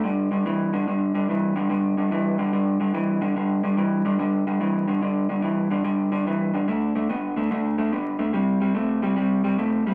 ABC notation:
X:1
M:4/4
L:1/8
Q:"Swing" 1/4=144
K:G
V:1 name="Clean electric guitar" clef=bass
[G,,D,] [G,,D,] [G,,E,] [G,,D,] [G,,D,] [G,,D,] [G,,E,] [G,,D,] | [G,,D,] [G,,D,] [G,,E,] [G,,D,] [G,,D,] [G,,D,] [G,,E,] [G,,D,] | [G,,D,] [G,,D,] [G,,E,] [G,,D,] [G,,D,] [G,,D,] [G,,E,] [G,,D,] | [G,,D,] [G,,D,] [G,,E,] [G,,D,] [G,,D,] [G,,D,] [G,,E,] [G,,D,] |
[D,A,] [D,A,] [D,B,] [D,A,] [D,A,] [D,A,] [D,B,] [D,A,] | [C,G,] [C,G,] [C,A,] [C,G,] [C,G,] [C,G,] [C,A,] [C,G,] |]